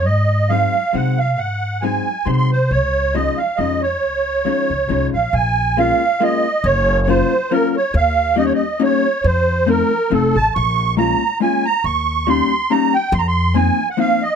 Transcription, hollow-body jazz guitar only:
X:1
M:3/4
L:1/8
Q:"Swing" 1/4=138
K:Db
V:1 name="Hollow-body jazz guitar"
z2 [G,A,CE] z [G,A,CE] z | z2 [G,A,CE] z [G,A,CE] z | z2 [F,A,DE] z [F,A,DE] z | z2 [F,A,DE] z [F,A,DE] z |
[K:Bbm] z2 [A,B,DF] z [A,B,DF] z | z2 [G,B,DF] z [G,B,DF] z | z2 [=G,B,DE] z [G,B,DE] z | z2 [F,=A,CE] z [F,A,CE] z |
z2 [A,B,DF] z [A,B,DF] z | z2 [=G,B,DE] z [G,B,DE] z | z2 [F,B,CE] z [F,B,CE] z |]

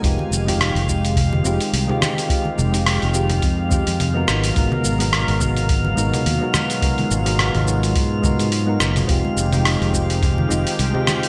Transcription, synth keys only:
X:1
M:4/4
L:1/16
Q:"Swing 16ths" 1/4=106
K:Fm
V:1 name="Synth keys"
[A,CEFG]3 [A,CEFG]3 [A,CEFG]4 [A,CEFG]2 z [A,CEFG]3 | [A,CEFG]3 [A,CEFG]3 [A,CEFG]4 [A,CEFG]2 z [A,=B,E_G_B]3 | [A,_CE_GB]3 [A,CEGB]3 [A,CEGB]4 [A,CEGB]2 z [A,CEGB]3 | [A,_CE_GB]3 [A,CEGB]3 [A,CEGB]4 [A,CEGB]2 z [A,CEGB]3 |
[A,CEFG]3 [A,CEFG]3 [A,CEFG]4 [A,CEFG]2 z [A,CEFG]3 |]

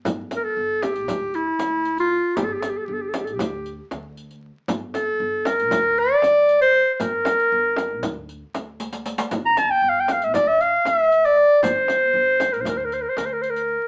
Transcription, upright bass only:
X:1
M:9/8
L:1/8
Q:3/8=78
K:none
V:1 name="Upright bass" clef=bass
G,,,2 G,,,2 D,,2 D,,3 | G,,,2 G,,,2 D,,2 D,,3 | G,,,2 G,,,2 D,,2 D,,3 | G,,,2 G,,,2 D,,2 D,,3 |
G,,,2 G,,,2 D,,2 D,,3 | G,,,2 G,,,2 D,,2 D,,3 |]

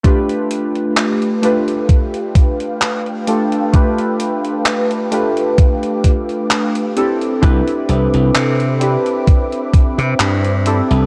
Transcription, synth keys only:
X:1
M:4/4
L:1/8
Q:"Swing 16ths" 1/4=65
K:Gmix
V:1 name="Synth keys"
[A,DFGB]3 [A,DFGB]4 [A,DFGA] | [A,DFGB]3 [A,DFGB]4 [CDEGA] | [CDEGB]3 [CDEGB]4 [CDEGA] |]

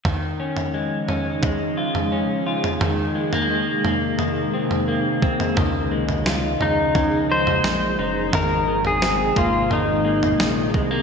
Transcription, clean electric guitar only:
X:1
M:4/4
L:1/16
Q:1/4=87
K:Db
V:1 name="Clean electric guitar"
E,2 D2 A,2 D2 A,2 F2 D2 F2 | E,2 A, B, E,2 B,2 E,2 C2 B,2 C2 | E,2 A,2 F2 E2 A,2 E2 A,2 E2 | E,2 E,2 C2 B,2 E,2 B,2 E,2 A, B, |]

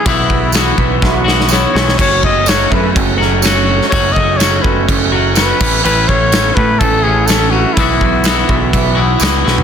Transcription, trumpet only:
X:1
M:4/4
L:1/8
Q:1/4=124
K:Bmix
V:1 name="Trumpet"
E2 F z F2 c2 | c d c B z2 c2 | c d c B z2 B2 | B c2 B A G A F |
E6 z2 |]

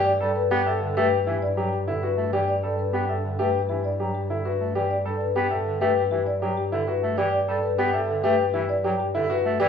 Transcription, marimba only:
X:1
M:4/4
L:1/16
Q:1/4=99
K:G
V:1 name="Marimba"
d z B z e z B z G d z G z B z d | d z B z e z B z G d z G z B z d | d z B z e z B z G d z G z B z d | d z B z e z B z G d z G z B z d |]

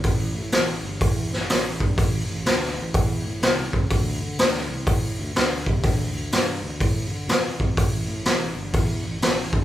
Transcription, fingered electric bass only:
X:1
M:4/4
L:1/8
Q:"Swing" 1/4=124
K:Am
V:1 name="Fingered electric bass" clef=bass
A,,, A,, A,,, G,,, E,, A,,, A,,, G,, | A,,, A,,, D,, A,,, E,, A,, C,, ^C,, | D,, D, D,, C,, A,, D,, D,, C, | D,, D,, G,, D,, A,, D, F,, F,, |
A,,, A,, A,,, G,,, E,, A,,, A,,, G,, |]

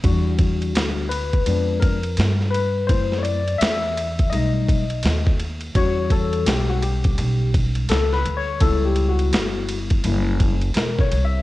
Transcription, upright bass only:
X:1
M:4/4
L:1/8
Q:"Swing 16ths" 1/4=84
K:Edor
V:1 name="Upright bass" clef=bass
E,,2 D,,2 =F,,2 G,,2 | F,,2 E,,2 B,,,2 ^D,,2 | E,,2 B,,,2 B,,,2 C,, D,, | C,,2 G,,,2 F,,,2 E,,, =C,, |]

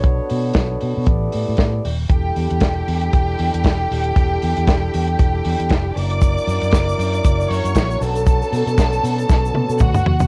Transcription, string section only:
X:1
M:4/4
L:1/8
Q:"Swing 16ths" 1/4=117
K:Edor
V:1 name="String section"
z8 | [Gg]8- | [Gg]6- [Gg] [dd']- | [dd']4- [dd'] [cc']2 [Aa]- |
[Aa]6 [Ff]2 |]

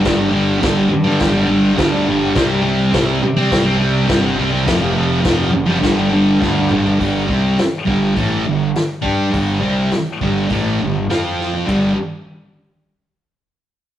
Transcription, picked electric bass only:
X:1
M:4/4
L:1/8
Q:1/4=103
K:C
V:1 name="Picked electric bass" clef=bass
G,,,2 G,,, G,, G,,,2 D,, G,,, | C,,2 C,, C, C,,2 G,,, C,, | F,,,2 F,,, ^F,,, G,,,2 D,, G,,, | G,,, C,, z G,,, A,,, G,,, z G,, |
G,,, C,, z G,,, A,,, G,,, F,,2 | G,,, z6 z |]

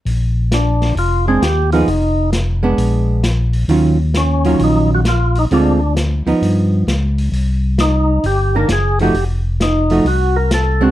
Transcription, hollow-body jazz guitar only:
X:1
M:4/4
L:1/8
Q:"Swing" 1/4=132
K:Bbmix
V:1 name="Hollow-body jazz guitar"
z4 z [A,CD] z [F,_CEA] | z3 [A,_CD]3 z2 | [E,_G,_DF] z2 [E,G,DF]3 z2 | [D,A,CF] z2 [F,_CE]3 z2 |
z4 z [E,B,D] z [F,=A,E_G] | z3 [F,=A,E_G] z3 [_A,CD] |]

